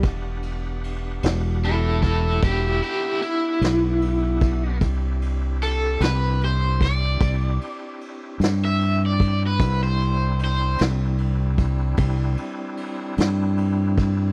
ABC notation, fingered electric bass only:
X:1
M:12/8
L:1/8
Q:3/8=50
K:Clyd
V:1 name="Fingered electric bass" clef=bass
E,,,3 E,,,3 E,,, z2 B,,,3 | C,,3 C,,3 C,, z2 G,,3 | C,,3 C,,3 C,, z2 G,,3 |]